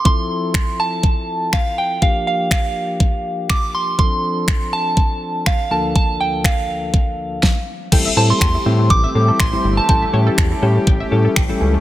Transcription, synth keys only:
\new Staff \with { instrumentName = "Synth keys" } { \time 4/4 \key a \phrygian \tempo 4 = 122 <f c' e' a'>1 | <f bes d' g'>1 | <f c' d' a'>2.~ <f c' d' a'>8 <d, f bes d' a'>8~ | <d, f bes d' a'>2. r4 |
<g c' e' a'>16 r16 <g c' e' a'>8. r16 <g c' e' a'>8. r16 <g c' e' a'>8 r16 <g c' e' c''>8 r16 | <g cis' e' a'>16 r16 <g cis' e' g'>8. r16 <g cis' e' g'>8. r16 <g cis' e' a'>8 r16 <g cis' e' a'>8 r16 | }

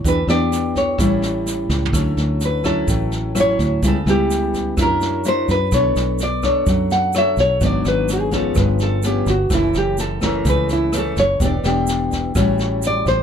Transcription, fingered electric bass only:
\new Staff \with { instrumentName = "Fingered electric bass" } { \clef bass \time 4/4 \key d \major \tempo 4 = 127 e,8 e,4. a,,4. cis,8 | d,8 d,4. a,,4. d,8 | cis,8 cis,4. fis,4. fis,8 | b,,8 b,,4. fis,4. b,,8 |
gis,,8 gis,,4. g,,4. g,,8 | fis,,8 fis,,4. cis,4. fis,,8 | e,,8 e,,4. a,,4. a,,8 | }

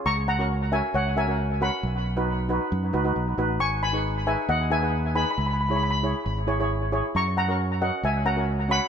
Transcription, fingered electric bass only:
\new Staff \with { instrumentName = "Fingered electric bass" } { \clef bass \time 4/4 \key fis \dorian \tempo 4 = 135 cis,2 cis,2 | b,,2 fis,8 cis,8 b,,8 a,,8 | gis,,2 dis,2 | cis,2 gis,,2 |
fis,2 cis,2 | }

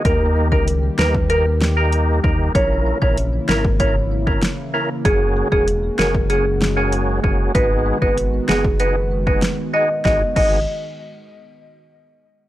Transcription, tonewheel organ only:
\new Staff \with { instrumentName = "Tonewheel organ" } { \time 4/4 \key gis \minor \tempo 4 = 96 <ais dis' g' ais'>8. <ais dis' g' ais'>16 r8 <ais dis' g' ais'>16 r16 <ais dis' g' ais'>16 r8 <ais dis' g' ais'>8. <ais dis' g' ais'>8 | <ais cis' e' ais'>8. <ais cis' e' ais'>16 r8 <ais cis' e' ais'>16 r16 <ais cis' e' ais'>16 r8 <ais cis' e' ais'>16 r8 <ais cis' e' ais'>16 r16 | <ais cis' fis' gis'>8. <ais cis' fis' gis'>16 r8 <ais cis' fis' gis'>16 r16 <ais cis' fis' gis'>16 r8 <ais cis' fis' gis'>8. <ais cis' fis' gis'>8 | <b dis' fis' gis'>8. <b dis' fis' gis'>16 r8 <b dis' fis' gis'>16 r16 <b dis' fis' gis'>16 r8 <b dis' fis' gis'>16 r8 <b dis' fis' gis'>16 r16 |
<b dis' fis' gis'>16 r16 <b dis' fis' gis'>8 r2. | }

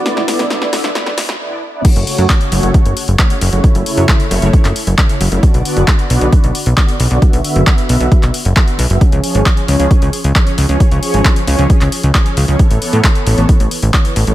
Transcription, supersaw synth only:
\new Staff \with { instrumentName = "Supersaw synth" } { \time 4/4 \key fis \minor \tempo 4 = 134 <d b e' d''>8 <d b e' d''>8 <d b e' d''>8 <d b e' d''>8 <d b e' d''>8 r8 <d b e' d''>8 r16 <d b e' d''>16 | <cis a fis' cis''>8 <cis a fis' cis''>8 <cis a fis' cis''>8 <cis a fis' cis''>8 <cis a fis' cis''>8 r8 <cis a fis' cis''>8 r16 <cis a fis' cis''>16 | <cis a e' cis''>8 <cis a e' cis''>8 <cis a e' cis''>8 <cis a e' cis''>8 <cis a e' cis''>8 r8 <cis a e' cis''>8 r16 <cis a e' cis''>16 | <d b fis' d''>8 <d b fis' d''>8 <d b fis' d''>8 <d b fis' d''>8 <d b fis' d''>8 r8 <d b fis' d''>8 r16 <d b fis' d''>16 |
<d b fis' e''>8 <d b fis' e''>8 <d b fis' e''>8 <d b fis' e''>8 <d b fis' e''>8 r8 <d b fis' e''>8 r16 <d b fis' e''>16 | <eis cis' gis' cis''>8 <eis cis' gis' cis''>8 <eis cis' gis' cis''>8 <eis cis' gis' cis''>8 <eis cis' gis' cis''>8 r8 <eis cis' gis' cis''>8 r16 <eis cis' gis' cis''>16 | <eis cis' gis' cis''>8 <eis cis' gis' cis''>8 <eis cis' gis' cis''>8 <eis cis' gis' cis''>8 <eis cis' gis' cis''>8 r8 <eis cis' gis' cis''>8 r16 <eis cis' gis' cis''>16 | <e b a' cis''>8 <e b a' cis''>8 <e b a' cis''>8 <e b a' cis''>8 <e b a' cis''>8 r8 <e b a' cis''>8 r16 <e b a' cis''>16 | }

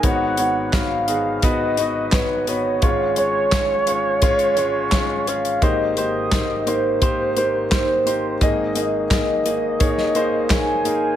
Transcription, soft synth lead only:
\new Staff \with { instrumentName = "Soft synth lead" } { \time 4/4 \key aes \major \tempo 4 = 86 fis''4 f''4 dis''4 b'8 cis''8~ | cis''8 des''2. f''8 | ees''8 ees''4 c''4. c''4 | ees''4 ees''2 aes''4 | }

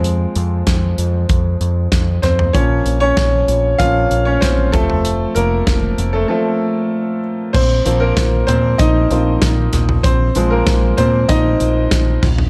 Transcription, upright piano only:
<<
  \new Staff \with { instrumentName = "Upright piano" } { \time 4/4 \key bes \minor \tempo 4 = 96 r2. r8 <c' c''>8 | des''8. <des' des''>4~ <des' des''>16 <f' f''>8. <des' des''>16 <c' c''>8 a'8~ | a'8 <bes bes'>4~ <bes bes'>16 <a a'>16 a'4. r8 | <c' c''>8. <bes bes'>8. <c' c''>8 <ees' ees''>4. r8 |
<c' c''>8. <bes bes'>8. <c' c''>8 <ees' ees''>4. r8 | }
  \new Staff \with { instrumentName = "Upright piano" } { \time 4/4 \key bes \minor <f aes c'>4 r2. | <f bes des'>8 r4. <f bes des'>8 r4 <f a c'>8 | r2 <f a c'>8 r4. | r8 <f bes c'>4. r8 <f bes c'>8 r4 |
r8 <f aes c'>8 r2. | }
>>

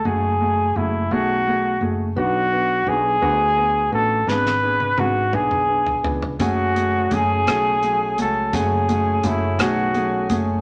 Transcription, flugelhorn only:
\new Staff \with { instrumentName = "Flugelhorn" } { \time 6/8 \key fis \minor \tempo 4. = 57 gis'4 e'8 fis'4 r8 | fis'4 gis'4. a'8 | b'4 fis'8 gis'4 r8 | fis'4 gis'4. a'8 |
gis'4 e'8 fis'4 r8 | }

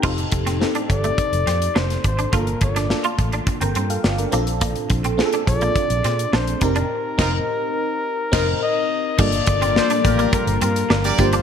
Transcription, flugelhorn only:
\new Staff \with { instrumentName = "Flugelhorn" } { \time 4/4 \key f \mixolydian \tempo 4 = 105 r4. d''4. c''8 c''8 | bes'8 d''4 r2 r8 | r4. d''4. c''8 bes'8~ | bes'2. ees''4 |
d''2 bes'8 bes'4 c''8 | }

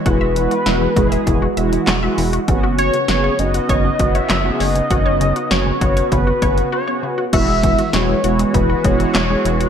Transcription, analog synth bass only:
\new Staff \with { instrumentName = "Analog synth bass" } { \clef bass \time 4/4 \key e \major \tempo 4 = 99 e,,4 e,,8 e,,8 e,,8 e,,8 e,,8 e,,8 | fis,,4 fis,,8 fis,,8 fis,,8 fis,,8 fis,,8 fis,,8 | fis,,4 fis,,8 fis,,8 fis,,8 fis,,8 r4 | e,,4 e,,8 e,,8 e,,8 e,,8 e,,8 e,,8 | }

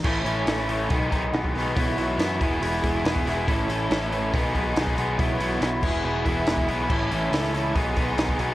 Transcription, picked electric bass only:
\new Staff \with { instrumentName = "Picked electric bass" } { \clef bass \time 4/4 \key a \lydian \tempo 4 = 140 a,,8 a,,8 a,,4 b,,8 b,,8 b,,8 b,,8 | b,,8 b,,8 fis,8 e,,8 e,,8 e,,8 e,,8 e,,8 | a,,8 a,,8 a,,4 b,,8 b,,8 b,,8 b,,8 | b,,8 b,,8 b,,8 e,,8 e,,8 e,,8 e,,8 b,,8 |
a,,8 a,,8 cis,4 b,,8 b,,8 b,,8 b,,8 | }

